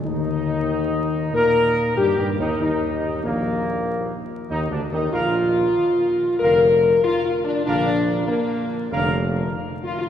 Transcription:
0.04 D#2 D#3 D#4
1.33 A#2 A#3 A#4
1.97 G2 G3 G4
2.18 G2 G3 G4
2.38 D#2 D#3 D#4
2.60 D#2 D#3 D#4
3.23 A#1 A#2 A#3
4.50 D#2 D#3 D#4
4.71 D2 D3 D4
4.92 D#2 D#3 D#4
5.13 A#1 D3 A#3 F4 A#4 F5
6.40 F1 D3 A#3 A#4 F5
7.04 F4
7.25 F4
7.45 D4
7.65 A#1 D3 A#3 D4 A#4 F5
8.28 A#3
8.90 F1 D3 A#3 A#4 F5
9.83 F4
9.99 F4

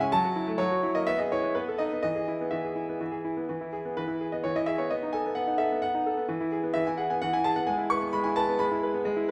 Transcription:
Already playing: C#3
0.01 C#4 G#5
0.12 F#3 A5
0.25 F#4
0.36 E4
0.47 A3
0.58 F#3 C#5
0.71 F#4
0.83 E4
0.95 A#3 D#5
1.07 B3 E5
1.19 G#4 D#5
1.32 E4 C#5
1.43 B3
1.55 B3 B4
1.68 A4
1.78 D#4 D#5
1.92 B3
2.03 E3 D#5
2.15 G#4
2.28 E4
2.41 B3
2.51 E3 E5
2.65 G#4
2.76 E4
2.89 B3
3.01 E3
3.12 G#4
3.25 E4
3.37 B3
3.49 E3
3.61 E4
3.73 G#4
3.85 B3
3.97 E3 B4
4.08 E4
4.20 G#4
4.32 B3 D#5
4.44 E3 C#5
4.55 E4 D#5
4.66 G#4 E5
4.78 B3 C#5
4.90 B3 D#5
5.03 D#4
5.13 A4 G#5
5.26 B3
5.35 B3 F#5
5.47 D#4
5.58 A4 E5
5.72 B3
5.82 B3 F#5
5.95 D#4
6.06 A4
6.17 B3
6.28 E3
6.41 E4
6.52 G#4
6.63 B3
6.74 E3 E5
6.87 E4 G#5
6.98 G#4 F#5
7.10 B3 G#5
7.22 E3 F#5
7.33 E4 G#5
7.44 G#4 A5
7.56 B3 F#5
7.67 G#3 G#5
7.78 E4
7.90 B4 C#6
8.02 B3
8.13 G#3 B5
8.24 E4 G#5
8.36 B4 A5
8.49 B3
8.59 G#3 B5
8.72 E4
8.83 B4
8.94 B3
9.05 G#3
9.17 E4

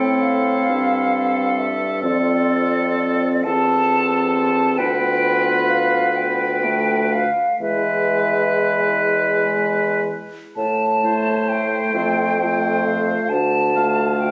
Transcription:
Already playing: A2 C4 E4 A4 G5
0.22 F5
0.69 G2
1.57 E5
2.02 F2 C4 F4 A4 D5
3.44 E2 C4 F4 A4 A5
4.34 A5
4.78 D2 B3 F4 B4 G5
5.68 F5
6.16 G5
6.63 A3
7.13 F5
7.60 E2 G#3 E4 B4 E5
10.56 A2 A5
11.03 A3 E4 C5
11.48 G5
11.94 F2 A3 F4 C5
12.40 A3 F4 C5
12.85 F5
13.29 D2 A5
13.75 A3 F4 F5
14.19 G5

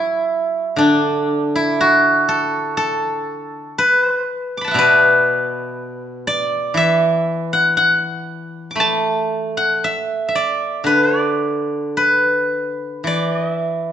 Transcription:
Already playing: F#3 E4 F#4 A4
0.76 D3 D4
1.56 E4
1.81 F#4
2.29 A4
2.77 A4
3.78 B4
4.57 B5 D6
4.64 F#5 A5
4.71 B2 E5
4.75 B4 D5
6.27 D5
6.74 E3 E5
7.53 F#5
7.77 F#5
8.71 D6
8.76 A3 B5
8.80 A5
9.57 F#5
9.84 E5
10.29 E5
10.35 D5
10.84 D3 B4
11.19 D5
11.97 B4
13.04 E3 D5
13.36 D#5
13.53 E5

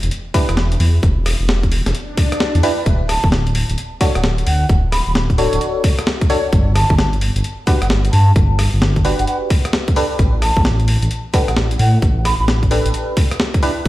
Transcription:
0.03 E1, closed hi-hat
0.11 closed hi-hat
0.34 D4 E4 G4 B4, kick, open hi-hat
0.49 E1, cross-stick, closed hi-hat
0.57 snare
0.72 closed hi-hat
0.80 E2, open hi-hat
1.03 E1, kick, closed hi-hat
1.26 cross-stick, open hi-hat
1.41 E1
1.49 snare
1.63 kick, closed hi-hat
1.72 open hi-hat
1.86 E1, snare, closed hi-hat
1.95 closed hi-hat, swell
2.17 kick, open hi-hat
2.32 cross-stick, closed hi-hat
2.40 snare
2.55 E2, closed hi-hat
2.63 D4 E4 G4 B4, open hi-hat
2.86 D1, kick, closed hi-hat
3.09 A5, cross-stick, open hi-hat
3.24 D1, kick
3.32 snare
3.47 closed hi-hat
3.55 open hi-hat
3.70 D1, closed hi-hat
3.78 closed hi-hat
4.01 D4 F#4 A4 C#5 F#5, kick, open hi-hat
4.15 D1 F#5, cross-stick, closed hi-hat
4.24 snare
4.38 closed hi-hat
4.46 D2 F#5, open hi-hat
4.69 D1, kick, closed hi-hat
4.92 B5, cross-stick, open hi-hat
5.07 D1 B5
5.15 snare
5.30 kick, closed hi-hat
5.38 D4 F#4 A4 C#5, open hi-hat
5.53 D1, closed hi-hat
5.61 closed hi-hat
5.84 kick, open hi-hat
5.99 cross-stick, closed hi-hat
6.07 snare
6.21 kick, closed hi-hat
6.30 D4 F#4 A4 C#5, open hi-hat
6.53 G1, kick, closed hi-hat
6.75 A5, cross-stick, open hi-hat
6.90 G1, kick
6.98 snare
7.13 closed hi-hat
7.21 open hi-hat
7.36 G1, closed hi-hat
7.44 closed hi-hat
7.67 D4 F#4 G4 B4 F#5, kick, open hi-hat
7.82 G1 F#5, cross-stick, closed hi-hat
7.90 snare
8.05 closed hi-hat
8.13 G2 A5, open hi-hat
8.36 G1, kick, closed hi-hat
8.59 cross-stick, open hi-hat
8.73 G1
8.82 snare
8.96 kick, closed hi-hat
9.05 D4 F#4 G4 B4, open hi-hat
9.19 G1 F#5, closed hi-hat
9.27 F#5, closed hi-hat
9.50 kick, open hi-hat
9.65 cross-stick, closed hi-hat
9.73 snare
9.88 kick, closed hi-hat
9.96 D4 G4 A4 B4, open hi-hat
10.19 A1, kick, closed hi-hat
10.42 A5, cross-stick, open hi-hat
10.57 A1, kick
10.65 snare
10.80 closed hi-hat
10.88 open hi-hat
11.02 A1, closed hi-hat
11.11 closed hi-hat
11.34 D4 G4 A4 B4 F#5, kick, open hi-hat
11.48 A1 F#5, cross-stick, closed hi-hat
11.57 snare
11.71 closed hi-hat
11.79 A2 F#5, open hi-hat
12.02 A1, kick, closed hi-hat
12.25 B5, cross-stick, open hi-hat
12.40 A1 B5
12.48 snare
12.63 kick, closed hi-hat
12.71 D4 G4 A4 B4, open hi-hat
12.86 A1, closed hi-hat
12.94 closed hi-hat
13.17 kick, open hi-hat
13.31 cross-stick, closed hi-hat
13.40 snare
13.54 kick, closed hi-hat
13.63 D4 E4 G4 B4, open hi-hat

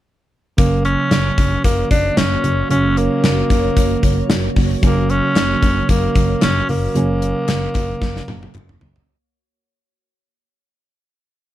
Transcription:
0.57 F#1 C#3 F#3 A#3 C#4 F#4 C#5, kick, closed hi-hat
0.85 C#4, closed hi-hat
1.11 F#1, snare, closed hi-hat
1.38 F#1, kick, closed hi-hat
1.64 F#1 A#3, kick, closed hi-hat
1.91 F#1 D4, kick, closed hi-hat
2.17 F#1 C#4, snare, closed hi-hat
2.44 F#1, closed hi-hat
2.69 F#1 C#3 F#3 A#3 C#4, closed hi-hat
2.97 A#3, closed hi-hat
3.24 F#1, snare, closed hi-hat
3.50 F#1, kick, closed hi-hat
3.77 F#1, kick, closed hi-hat
4.03 F#1, kick, closed hi-hat
4.29 F#1, snare, closed hi-hat
4.56 F#1, kick, open hi-hat
4.81 F#1 C#3 F#3 A#3 C#4, kick, closed hi-hat
5.09 C#4, closed hi-hat
5.36 F#1, snare, clap, closed hi-hat
5.62 F#1, kick, closed hi-hat
5.89 F#1 A#3, kick, closed hi-hat
6.15 F#1, kick, closed hi-hat
6.42 F#1 C#4, snare, clap, closed hi-hat
6.69 F#1 A#3, open hi-hat
6.94 F#1 C#3 F#3 A#3 C#4, closed hi-hat
7.22 closed hi-hat
7.48 F#1, snare, clap, closed hi-hat
7.75 F#1, kick, clap, closed hi-hat
8.02 F#1, kick, snare
8.16 snare
8.28 F#1, high tom
8.43 high tom
8.55 F#1, clap, mid tom
8.69 mid tom
8.81 F#1, floor tom
8.96 floor tom

